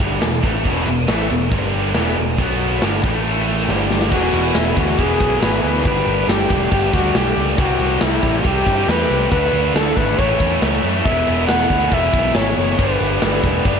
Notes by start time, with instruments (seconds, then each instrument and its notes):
0.00 picked electric bass G1, distorted electric guitar G2 D3 G3, crash
0.22 picked electric bass E1, distorted electric guitar E2 B2, snare, crash
0.43 picked electric bass A1, distorted electric guitar A2 E3 A3, kick, crash
0.65 picked electric bass E1, distorted electric guitar E2 B2 E3, kick, crash
0.87 picked electric bass E1, distorted electric guitar E2 B2, crash
1.08 picked electric bass A1, distorted electric guitar A2 E3 A3, snare, crash
1.30 picked electric bass E1, distorted electric guitar E2 B2, crash
1.52 picked electric bass G1, distorted electric guitar G2 D3 G3, kick, crash
1.74 crash
1.95 picked electric bass E1, distorted electric guitar E2 B2 E3, snare, crash
2.17 picked electric bass E1, distorted electric guitar E2 B2, crash
2.38 picked electric bass B1, distorted electric guitar B2 F#3 B3, kick, crash
2.60 crash
2.81 picked electric bass G1, distorted electric guitar G2 D3 G3, snare, crash
3.04 picked electric bass A1, distorted electric guitar A2 E3 A3, kick, crash
3.25 crash
3.47 crash
3.68 picked electric bass G1, distorted electric guitar G2 D3 G3, snare
3.90 snare
4.01 snare
4.10 picked electric bass E1, distorted electric guitar E2 B2 E3 B3 E4, flugelhorn F#4, kick, crash
4.15 distorted electric guitar G#4
4.34 picked electric bass E1, crash
4.55 picked electric bass E1, flugelhorn E4, snare, crash
4.66 snare
4.77 picked electric bass D2, distorted electric guitar E2 B2 E3, flugelhorn F#4, kick, crash
4.97 picked electric bass E1, distorted electric guitar E2 B2 E3, flugelhorn G#4, kick, crash
5.20 picked electric bass B1, distorted electric guitar E3 B3 E4 G#4, kick, crash
5.41 picked electric bass G#1, distorted electric guitar E3 B3 E4 G#4, flugelhorn B4, snare, crash
5.63 picked electric bass D2, flugelhorn B4, crash
5.75 snare
5.84 picked electric bass G1, distorted electric guitar G2 D3 G3 B3 D4, kick, crash
5.88 distorted electric guitar G4
6.06 picked electric bass G1, crash
6.28 picked electric bass G1, flugelhorn G4, snare, crash
6.40 snare
6.50 picked electric bass E1, distorted electric guitar G2 D3 G3, kick, crash
6.71 picked electric bass G1, distorted electric guitar G2 D3 G3, flugelhorn G4, kick, crash
6.93 picked electric bass D2, distorted electric guitar B3 D4 G4, flugelhorn F#4, kick, crash
6.97 distorted electric guitar G3
7.14 picked electric bass B1, distorted electric guitar G3 B3 D4 G4, flugelhorn G4, snare, crash
7.36 picked electric bass C#2, crash
7.48 snare
7.58 picked electric bass C2, distorted electric guitar C3 E3 G3 C4 G4, flugelhorn F#4, kick, crash
7.80 picked electric bass C2, crash
8.01 picked electric bass C2, flugelhorn E4, snare, crash
8.12 snare
8.22 picked electric bass A1, distorted electric guitar C3 G3 C4, kick, crash
8.44 picked electric bass C2, distorted electric guitar C3 G3 C4, flugelhorn G4, kick, crash
8.65 picked electric bass G2, distorted electric guitar E3 G3 C4 G4, kick, crash
8.70 distorted electric guitar C3
8.87 picked electric bass E2, distorted electric guitar C3 E3 G3 C4 G4, flugelhorn B4, snare, crash
9.10 picked electric bass C2, crash
9.30 picked electric bass D2, distorted electric guitar D3 A3 D4, flugelhorn B4, kick, crash
9.35 distorted electric guitar F#4
9.53 picked electric bass D2, crash
9.74 picked electric bass D2, flugelhorn A4, snare, crash
9.95 picked electric bass G#1, distorted electric guitar D3 A3 D4, flugelhorn B4, kick, crash
10.18 picked electric bass A1, distorted electric guitar A2 E3 A3 C#4 E4, flugelhorn C#5, kick, crash
10.40 picked electric bass E2, kick, crash
10.62 picked electric bass C#2, snare, crash
10.82 picked electric bass F#2, distorted electric guitar A2 E3 A3, crash
11.03 picked electric bass E1, distorted electric guitar E2 B2 E3 G#3 B3 E4, flugelhorn E5, kick, crash
11.27 picked electric bass E1, crash
11.47 picked electric bass E1, flugelhorn F#5, snare, crash
11.59 snare
11.70 picked electric bass D2, distorted electric guitar E2 B2 E3, kick, crash
11.91 picked electric bass E1, distorted electric guitar E2 B2 E3, flugelhorn E5, kick, crash
12.12 picked electric bass B1, distorted electric guitar G#3 B3 E4, kick, crash
12.16 distorted electric guitar E3
12.34 picked electric bass G#1, distorted electric guitar E3 G#3 B3, flugelhorn C#5, snare, crash
12.38 distorted electric guitar E4
12.57 picked electric bass F#1, flugelhorn C#5, crash
12.77 picked electric bass G1, distorted electric guitar G2 D3 G3 B3 D4, flugelhorn B4, kick, crash
13.00 picked electric bass G1, crash
13.22 picked electric bass G1, flugelhorn B4, snare, crash
13.33 snare
13.43 picked electric bass E1, distorted electric guitar G2 D3 G3, kick, crash
13.65 picked electric bass G1, distorted electric guitar G2 D3 G3, flugelhorn D5, kick, crash